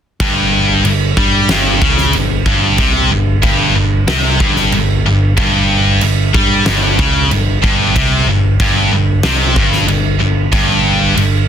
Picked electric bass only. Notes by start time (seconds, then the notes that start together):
0.20 G1
0.84 G1
1.17 G2
1.49 G1
1.82 C#2
2.14 G1
2.46 G1
2.78 C2
3.11 G1
3.43 G1
3.76 G1
4.07 C2
4.40 G1
4.72 G1
5.05 G1
5.38 G1
6.02 G1
6.34 G2
6.67 G1
6.99 C#2
7.31 G1
7.64 G1
7.96 C2
8.27 G1
8.60 G1
8.91 G1
9.24 C2
9.56 G1
9.89 G1
10.20 G1
10.52 G1
11.17 G1